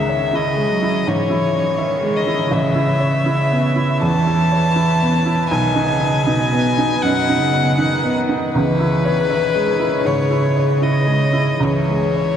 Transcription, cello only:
0.00 0.35 D#3 soft
0.34 0.71 C#3 soft
0.72 1.08 F#3 soft
1.06 1.81 E3 soft
1.80 2.50 D#3 soft
2.51 4.03 C#3 soft
4.02 5.50 E3 soft
5.51 5.90 D#3 medium
5.88 6.28 C#3 medium
6.26 7.02 B2 soft
7.02 7.41 B2 soft
7.39 7.81 C#3 medium
7.79 8.54 D#3 soft
8.52 9.29 E3 soft
9.31 10.07 D#3 soft
10.06 11.60 C#3 soft
11.61 12.37 E3 soft

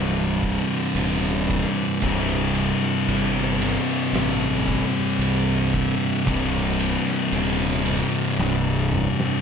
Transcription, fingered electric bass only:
0.00 0.59 C1 medium
0.95 1.64 D#1 loud
2.02 2.71 C1 medium
3.08 3.77 G1 loud
4.13 4.82 A1 medium
5.19 5.88 C2 medium
6.27 6.95 C1 loud
7.32 8.01 D#1 loud
8.39 9.07 C1 loud

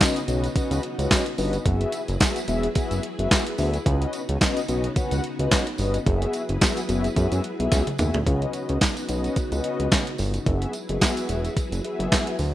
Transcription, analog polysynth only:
0.00 0.19 C#4 medium
0.00 0.19 F#4 medium
0.00 0.19 B4 medium
0.00 0.19 D#5 loud
0.28 0.46 C#4 medium
0.28 0.47 F#4 medium
0.28 0.47 B4 medium
0.28 0.47 D#5 loud
0.55 0.81 C#4 medium
0.55 0.82 F#4 medium
0.55 0.82 B4 medium
0.55 0.82 D#5 loud
0.98 1.24 C#4 medium
0.98 1.24 F#4 medium
0.98 1.24 B4 medium
0.98 1.24 D#5 loud
1.38 1.56 C#4 medium
1.38 1.56 F#4 medium
1.38 1.57 B4 medium
1.38 1.57 D#5 medium
1.65 2.01 B3 medium
1.65 2.01 F#4 medium
1.65 2.01 G#4 medium
1.65 2.01 E5 medium
2.20 2.39 B3 medium
2.20 2.39 F#4 medium
2.20 2.39 G#4 medium
2.20 2.39 E5 medium
2.48 2.67 B3 medium
2.48 2.67 F#4 medium
2.48 2.67 G#4 medium
2.48 2.67 E5 loud
2.76 3.02 B3 medium
2.76 3.02 F#4 medium
2.76 3.02 G#4 medium
2.76 3.02 E5 loud
3.19 3.44 B3 medium
3.19 3.44 F#4 medium
3.19 3.44 G#4 medium
3.19 3.45 E5 loud
3.58 3.77 B3 medium
3.58 3.77 F#4 medium
3.58 3.77 G#4 medium
3.58 3.77 E5 loud
3.86 4.21 C#4 medium
3.86 4.21 F#4 medium
3.86 4.21 B4 medium
3.86 4.21 D#5 medium
4.41 4.59 C#4 medium
4.41 4.59 F#4 medium
4.41 4.60 B4 medium
4.41 4.60 D#5 loud
4.69 4.87 C#4 medium
4.69 4.87 F#4 medium
4.69 4.87 B4 medium
4.69 4.87 D#5 loud
4.96 5.22 C#4 medium
4.96 5.22 F#4 medium
4.96 5.22 B4 medium
4.96 5.22 F#5 loud
5.39 5.65 C#4 medium
5.39 5.65 F#4 medium
5.39 5.65 B4 medium
5.39 5.65 D#5 loud
5.79 5.97 C#4 medium
5.79 5.97 F#4 medium
5.79 5.97 B4 medium
5.79 5.98 D#5 loud
6.06 6.41 B3 medium
6.06 6.42 F#4 medium
6.06 6.42 G#4 medium
6.06 6.42 E5 medium
6.61 6.80 B3 medium
6.61 6.80 F#4 medium
6.61 6.80 G#4 medium
6.61 6.80 E5 loud
6.88 7.07 B3 loud
6.88 7.07 F#4 medium
6.88 7.07 G#4 medium
6.88 7.07 E5 loud
7.16 7.42 B3 medium
7.16 7.42 F#4 medium
7.16 7.42 G#4 medium
7.16 7.43 E5 medium
7.59 7.85 B3 medium
7.59 7.85 F#4 medium
7.59 7.85 G#4 medium
7.59 7.85 E5 loud
7.99 8.17 B3 medium
7.99 8.17 F#4 medium
7.99 8.17 G#4 medium
7.99 8.18 E5 loud
8.26 8.78 C#4 medium
8.26 8.78 F#4 medium
8.26 8.78 B4 medium
8.26 8.79 D#5 medium
9.08 9.35 C#4 medium
9.08 9.35 F#4 medium
9.08 9.35 B4 medium
9.08 9.35 D#5 loud
9.51 10.11 C#4 medium
9.51 10.11 F#4 medium
9.51 10.11 B4 medium
9.51 10.12 D#5 loud
10.46 10.72 B3 medium
10.46 10.73 F#4 medium
10.46 10.73 G#4 medium
10.46 10.73 E5 medium
10.89 11.49 B3 medium
10.89 11.49 F#4 medium
10.89 11.49 G#4 medium
10.89 10.95 D#5 medium
10.96 11.52 E5 medium
11.84 12.36 B3 medium
11.84 12.36 F#4 medium
11.84 12.36 G#4 medium
11.84 12.36 E5 loud

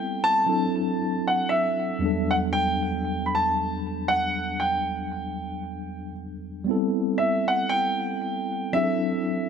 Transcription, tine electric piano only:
0.00 0.41 G3 medium
0.00 0.42 B3 medium
0.00 0.43 C4 medium
0.00 0.44 E4 medium
0.00 0.45 A4 medium
0.46 2.01 F#3 medium
0.46 2.02 C4 medium
0.46 2.02 D4 medium
0.46 2.03 E4 medium
0.46 2.03 A4 medium
1.99 6.10 E2 medium
1.99 6.11 G3 medium
1.99 6.11 B3 medium
2.03 6.13 F#3 medium
2.03 6.12 D4 medium
2.03 6.13 A4 medium
6.64 8.69 G3 medium
6.64 8.69 B3 medium
6.64 8.70 C4 medium
6.69 8.71 E4 medium
6.69 8.72 A4 medium
8.73 9.49 F#3 medium
8.73 9.49 C4 medium
8.73 9.49 D4 medium
8.73 9.49 E4 medium
8.73 8.83 G#4 medium
8.83 9.49 A4 medium

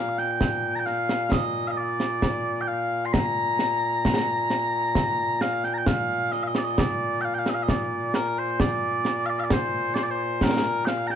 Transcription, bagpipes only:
0.00 11.15 A#2 medium
0.00 0.18 F5 medium
0.18 0.75 G5 medium
0.75 0.86 G5 medium
0.75 0.79 A#5 medium
0.86 1.32 F5 loud
1.32 1.67 D#5 medium
1.67 1.77 D#5 medium
1.67 1.71 F5 medium
1.77 2.61 D5 medium
2.61 2.68 G5 medium
2.68 3.06 F5 medium
3.06 3.13 C6 medium
3.13 5.41 A#5 loud
5.41 5.64 F5 medium
5.64 5.74 G5 medium
5.74 5.87 G5 medium
5.74 5.78 A#5 medium
5.87 6.32 F5 medium
6.32 6.43 D#5 medium
6.43 6.47 F5 medium
6.47 6.58 D#5 medium
6.58 6.64 D5 medium
6.64 6.79 D#5 medium
6.79 7.21 D5 medium
7.21 7.34 F5 medium
7.21 7.25 G5 medium
7.34 7.39 G5 medium
7.39 7.49 F5 medium
7.49 7.54 D#5 medium
7.54 7.63 F5 medium
7.63 7.69 D#5 medium
7.69 8.15 D5 medium
8.15 8.38 A#4 medium
8.38 8.60 C5 medium
8.60 9.26 D5 loud
9.26 9.39 D5 medium
9.26 9.29 F5 medium
9.39 9.44 F5 medium
9.44 9.53 D5 medium
9.53 9.94 C5 medium
9.94 10.03 C5 medium
9.94 9.98 D5 medium
10.03 10.11 D5 medium
10.11 10.43 C5 medium
10.43 10.85 A#4 medium
10.85 11.07 F5 medium
10.85 10.89 G5 medium
11.07 11.15 G5 medium
11.07 11.11 A#5 medium

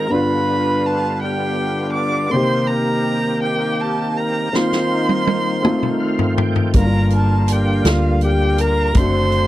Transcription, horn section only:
0.00 0.12 A#4 medium
0.13 1.19 D4 medium
0.13 1.19 F4 medium
0.13 1.19 B4 medium
1.24 2.29 B3 medium
1.24 2.30 D4 medium
1.24 1.97 G4 medium
1.96 2.33 D5 medium
2.34 3.27 D#4 medium
2.34 3.27 G4 medium
2.34 2.70 C5 medium
2.70 3.16 A#4 medium
3.44 4.50 A#3 medium
3.44 4.50 D#4 medium
3.44 4.13 G4 medium
4.17 4.54 A#4 medium
4.53 6.33 D#4 medium
4.53 6.38 C5 medium
6.76 7.82 D4 medium
6.76 7.82 F4 medium
6.76 7.45 A#4 medium
7.50 7.86 G4 medium
7.85 8.19 F4 medium
8.24 8.60 G4 medium
8.60 8.96 A#4 medium
8.96 9.47 A3 medium
8.96 9.47 C5 medium

